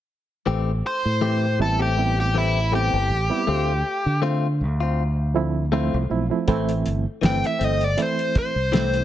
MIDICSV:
0, 0, Header, 1, 6, 480
1, 0, Start_track
1, 0, Key_signature, 0, "minor"
1, 0, Tempo, 750939
1, 299, Time_signature, 4, 2, 24, 8
1, 5780, End_track
2, 0, Start_track
2, 0, Title_t, "Overdriven electric guitar"
2, 0, Program_c, 0, 29
2, 554, Note_on_c, 0, 72, 71
2, 1013, Note_off_c, 0, 72, 0
2, 1034, Note_on_c, 0, 69, 67
2, 1155, Note_off_c, 0, 69, 0
2, 1163, Note_on_c, 0, 67, 63
2, 1391, Note_off_c, 0, 67, 0
2, 1406, Note_on_c, 0, 67, 74
2, 1519, Note_off_c, 0, 67, 0
2, 1519, Note_on_c, 0, 64, 73
2, 1743, Note_off_c, 0, 64, 0
2, 1759, Note_on_c, 0, 67, 78
2, 2685, Note_off_c, 0, 67, 0
2, 4638, Note_on_c, 0, 79, 69
2, 4757, Note_off_c, 0, 79, 0
2, 4772, Note_on_c, 0, 76, 80
2, 4884, Note_off_c, 0, 76, 0
2, 4884, Note_on_c, 0, 75, 78
2, 5012, Note_off_c, 0, 75, 0
2, 5012, Note_on_c, 0, 74, 78
2, 5108, Note_off_c, 0, 74, 0
2, 5127, Note_on_c, 0, 72, 75
2, 5347, Note_off_c, 0, 72, 0
2, 5359, Note_on_c, 0, 72, 86
2, 5780, Note_off_c, 0, 72, 0
2, 5780, End_track
3, 0, Start_track
3, 0, Title_t, "Clean electric guitar"
3, 0, Program_c, 1, 27
3, 293, Note_on_c, 1, 52, 63
3, 297, Note_on_c, 1, 57, 71
3, 300, Note_on_c, 1, 60, 79
3, 302, Note_on_c, 1, 67, 81
3, 449, Note_off_c, 1, 52, 0
3, 451, Note_off_c, 1, 57, 0
3, 453, Note_off_c, 1, 60, 0
3, 454, Note_off_c, 1, 67, 0
3, 775, Note_on_c, 1, 52, 71
3, 776, Note_on_c, 1, 57, 68
3, 779, Note_on_c, 1, 60, 66
3, 781, Note_on_c, 1, 67, 71
3, 931, Note_off_c, 1, 52, 0
3, 931, Note_off_c, 1, 57, 0
3, 933, Note_off_c, 1, 60, 0
3, 933, Note_off_c, 1, 67, 0
3, 1146, Note_on_c, 1, 67, 42
3, 1151, Note_on_c, 1, 60, 35
3, 1159, Note_on_c, 1, 57, 33
3, 1284, Note_off_c, 1, 67, 0
3, 1287, Note_off_c, 1, 60, 0
3, 1291, Note_off_c, 1, 57, 0
3, 1495, Note_on_c, 1, 52, 47
3, 1501, Note_on_c, 1, 57, 43
3, 1505, Note_on_c, 1, 60, 52
3, 1508, Note_on_c, 1, 67, 46
3, 1651, Note_off_c, 1, 52, 0
3, 1654, Note_off_c, 1, 57, 0
3, 1656, Note_off_c, 1, 60, 0
3, 1658, Note_off_c, 1, 67, 0
3, 1739, Note_on_c, 1, 52, 57
3, 1740, Note_on_c, 1, 57, 66
3, 1745, Note_on_c, 1, 60, 69
3, 1746, Note_on_c, 1, 67, 73
3, 1893, Note_off_c, 1, 52, 0
3, 1894, Note_off_c, 1, 57, 0
3, 1896, Note_off_c, 1, 60, 0
3, 1897, Note_off_c, 1, 67, 0
3, 2220, Note_on_c, 1, 57, 70
3, 2226, Note_on_c, 1, 60, 72
3, 2230, Note_on_c, 1, 65, 63
3, 2374, Note_off_c, 1, 57, 0
3, 2377, Note_off_c, 1, 60, 0
3, 2379, Note_off_c, 1, 65, 0
3, 2696, Note_on_c, 1, 57, 77
3, 2701, Note_on_c, 1, 60, 72
3, 2703, Note_on_c, 1, 65, 85
3, 2852, Note_off_c, 1, 57, 0
3, 2854, Note_off_c, 1, 60, 0
3, 2856, Note_off_c, 1, 65, 0
3, 3071, Note_on_c, 1, 65, 56
3, 3085, Note_on_c, 1, 60, 36
3, 3208, Note_off_c, 1, 65, 0
3, 3214, Note_off_c, 1, 60, 0
3, 3656, Note_on_c, 1, 57, 81
3, 3662, Note_on_c, 1, 60, 87
3, 3665, Note_on_c, 1, 65, 81
3, 3812, Note_off_c, 1, 57, 0
3, 3815, Note_off_c, 1, 60, 0
3, 3817, Note_off_c, 1, 65, 0
3, 4142, Note_on_c, 1, 52, 74
3, 4146, Note_on_c, 1, 57, 85
3, 4150, Note_on_c, 1, 60, 75
3, 4295, Note_off_c, 1, 52, 0
3, 4297, Note_off_c, 1, 57, 0
3, 4299, Note_off_c, 1, 60, 0
3, 4611, Note_on_c, 1, 52, 69
3, 4619, Note_on_c, 1, 57, 81
3, 4622, Note_on_c, 1, 60, 77
3, 4769, Note_off_c, 1, 52, 0
3, 4773, Note_off_c, 1, 57, 0
3, 4775, Note_off_c, 1, 60, 0
3, 4852, Note_on_c, 1, 60, 55
3, 4863, Note_on_c, 1, 57, 45
3, 5009, Note_off_c, 1, 60, 0
3, 5015, Note_off_c, 1, 57, 0
3, 5575, Note_on_c, 1, 52, 68
3, 5580, Note_on_c, 1, 57, 88
3, 5582, Note_on_c, 1, 60, 84
3, 5730, Note_off_c, 1, 52, 0
3, 5733, Note_off_c, 1, 57, 0
3, 5734, Note_off_c, 1, 60, 0
3, 5780, End_track
4, 0, Start_track
4, 0, Title_t, "Reed electric piano"
4, 0, Program_c, 2, 4
4, 1017, Note_on_c, 2, 55, 67
4, 1022, Note_on_c, 2, 59, 61
4, 1022, Note_on_c, 2, 60, 60
4, 1027, Note_on_c, 2, 64, 76
4, 1201, Note_off_c, 2, 55, 0
4, 1204, Note_off_c, 2, 59, 0
4, 1204, Note_off_c, 2, 60, 0
4, 1206, Note_off_c, 2, 64, 0
4, 1260, Note_on_c, 2, 55, 74
4, 1263, Note_on_c, 2, 59, 60
4, 1265, Note_on_c, 2, 60, 63
4, 1269, Note_on_c, 2, 64, 66
4, 1624, Note_off_c, 2, 55, 0
4, 1626, Note_off_c, 2, 59, 0
4, 1627, Note_off_c, 2, 60, 0
4, 1629, Note_off_c, 2, 64, 0
4, 1734, Note_on_c, 2, 55, 56
4, 1735, Note_on_c, 2, 59, 59
4, 1738, Note_on_c, 2, 60, 56
4, 1744, Note_on_c, 2, 64, 64
4, 2005, Note_off_c, 2, 55, 0
4, 2006, Note_off_c, 2, 59, 0
4, 2007, Note_off_c, 2, 60, 0
4, 2010, Note_off_c, 2, 64, 0
4, 2108, Note_on_c, 2, 59, 70
4, 2109, Note_on_c, 2, 55, 74
4, 2113, Note_on_c, 2, 60, 58
4, 2114, Note_on_c, 2, 64, 84
4, 2219, Note_off_c, 2, 59, 0
4, 2220, Note_off_c, 2, 55, 0
4, 2222, Note_off_c, 2, 60, 0
4, 2222, Note_off_c, 2, 64, 0
4, 3416, Note_on_c, 2, 53, 90
4, 3420, Note_on_c, 2, 57, 78
4, 3423, Note_on_c, 2, 64, 97
4, 3426, Note_on_c, 2, 60, 82
4, 3602, Note_off_c, 2, 53, 0
4, 3603, Note_off_c, 2, 57, 0
4, 3605, Note_off_c, 2, 64, 0
4, 3606, Note_off_c, 2, 60, 0
4, 3655, Note_on_c, 2, 53, 77
4, 3657, Note_on_c, 2, 57, 75
4, 3661, Note_on_c, 2, 60, 68
4, 3664, Note_on_c, 2, 64, 80
4, 3841, Note_off_c, 2, 53, 0
4, 3842, Note_off_c, 2, 57, 0
4, 3844, Note_off_c, 2, 60, 0
4, 3845, Note_off_c, 2, 64, 0
4, 3899, Note_on_c, 2, 53, 76
4, 3901, Note_on_c, 2, 57, 66
4, 3905, Note_on_c, 2, 60, 72
4, 3907, Note_on_c, 2, 64, 88
4, 3997, Note_off_c, 2, 53, 0
4, 3998, Note_off_c, 2, 57, 0
4, 4000, Note_off_c, 2, 60, 0
4, 4001, Note_off_c, 2, 64, 0
4, 4027, Note_on_c, 2, 53, 76
4, 4033, Note_on_c, 2, 60, 64
4, 4034, Note_on_c, 2, 57, 62
4, 4035, Note_on_c, 2, 64, 81
4, 4135, Note_off_c, 2, 57, 0
4, 4135, Note_off_c, 2, 60, 0
4, 4138, Note_off_c, 2, 64, 0
4, 4138, Note_on_c, 2, 52, 91
4, 4139, Note_off_c, 2, 53, 0
4, 4142, Note_on_c, 2, 57, 83
4, 4143, Note_on_c, 2, 60, 81
4, 4145, Note_on_c, 2, 64, 88
4, 4503, Note_off_c, 2, 52, 0
4, 4505, Note_off_c, 2, 57, 0
4, 4506, Note_off_c, 2, 60, 0
4, 4507, Note_off_c, 2, 64, 0
4, 4616, Note_on_c, 2, 52, 76
4, 4619, Note_on_c, 2, 60, 64
4, 4620, Note_on_c, 2, 57, 68
4, 4624, Note_on_c, 2, 64, 81
4, 4982, Note_off_c, 2, 52, 0
4, 4983, Note_off_c, 2, 60, 0
4, 4984, Note_off_c, 2, 57, 0
4, 4986, Note_off_c, 2, 64, 0
4, 5096, Note_on_c, 2, 52, 78
4, 5097, Note_on_c, 2, 57, 71
4, 5102, Note_on_c, 2, 60, 69
4, 5103, Note_on_c, 2, 64, 77
4, 5461, Note_off_c, 2, 52, 0
4, 5462, Note_off_c, 2, 57, 0
4, 5464, Note_off_c, 2, 60, 0
4, 5465, Note_off_c, 2, 64, 0
4, 5580, Note_on_c, 2, 52, 66
4, 5584, Note_on_c, 2, 57, 57
4, 5585, Note_on_c, 2, 60, 54
4, 5587, Note_on_c, 2, 64, 70
4, 5780, Note_off_c, 2, 52, 0
4, 5780, Note_off_c, 2, 57, 0
4, 5780, Note_off_c, 2, 60, 0
4, 5780, Note_off_c, 2, 64, 0
4, 5780, End_track
5, 0, Start_track
5, 0, Title_t, "Fingered electric bass"
5, 0, Program_c, 3, 33
5, 302, Note_on_c, 3, 33, 71
5, 519, Note_off_c, 3, 33, 0
5, 674, Note_on_c, 3, 45, 72
5, 1019, Note_on_c, 3, 33, 80
5, 1029, Note_off_c, 3, 45, 0
5, 1846, Note_off_c, 3, 33, 0
5, 1875, Note_on_c, 3, 31, 82
5, 1972, Note_off_c, 3, 31, 0
5, 1980, Note_on_c, 3, 33, 84
5, 2099, Note_off_c, 3, 33, 0
5, 2224, Note_on_c, 3, 38, 89
5, 2440, Note_off_c, 3, 38, 0
5, 2595, Note_on_c, 3, 50, 83
5, 2946, Note_on_c, 3, 38, 77
5, 2956, Note_off_c, 3, 50, 0
5, 3770, Note_off_c, 3, 38, 0
5, 3797, Note_on_c, 3, 36, 86
5, 3894, Note_off_c, 3, 36, 0
5, 3903, Note_on_c, 3, 35, 77
5, 4021, Note_off_c, 3, 35, 0
5, 4145, Note_on_c, 3, 33, 88
5, 4361, Note_off_c, 3, 33, 0
5, 4386, Note_on_c, 3, 31, 78
5, 4503, Note_off_c, 3, 31, 0
5, 4623, Note_on_c, 3, 31, 86
5, 4741, Note_off_c, 3, 31, 0
5, 4862, Note_on_c, 3, 31, 76
5, 5079, Note_off_c, 3, 31, 0
5, 5469, Note_on_c, 3, 36, 70
5, 5780, Note_off_c, 3, 36, 0
5, 5780, End_track
6, 0, Start_track
6, 0, Title_t, "Drums"
6, 4140, Note_on_c, 9, 42, 71
6, 4142, Note_on_c, 9, 36, 92
6, 4204, Note_off_c, 9, 42, 0
6, 4206, Note_off_c, 9, 36, 0
6, 4274, Note_on_c, 9, 42, 38
6, 4338, Note_off_c, 9, 42, 0
6, 4383, Note_on_c, 9, 42, 62
6, 4447, Note_off_c, 9, 42, 0
6, 4623, Note_on_c, 9, 42, 81
6, 4630, Note_on_c, 9, 38, 111
6, 4687, Note_off_c, 9, 42, 0
6, 4694, Note_off_c, 9, 38, 0
6, 4756, Note_on_c, 9, 42, 36
6, 4820, Note_off_c, 9, 42, 0
6, 4863, Note_on_c, 9, 42, 59
6, 4927, Note_off_c, 9, 42, 0
6, 4992, Note_on_c, 9, 42, 42
6, 5056, Note_off_c, 9, 42, 0
6, 5099, Note_on_c, 9, 42, 87
6, 5163, Note_off_c, 9, 42, 0
6, 5235, Note_on_c, 9, 42, 36
6, 5299, Note_off_c, 9, 42, 0
6, 5340, Note_on_c, 9, 42, 60
6, 5341, Note_on_c, 9, 36, 67
6, 5404, Note_off_c, 9, 42, 0
6, 5405, Note_off_c, 9, 36, 0
6, 5583, Note_on_c, 9, 42, 76
6, 5589, Note_on_c, 9, 38, 92
6, 5647, Note_off_c, 9, 42, 0
6, 5653, Note_off_c, 9, 38, 0
6, 5712, Note_on_c, 9, 42, 37
6, 5776, Note_off_c, 9, 42, 0
6, 5780, End_track
0, 0, End_of_file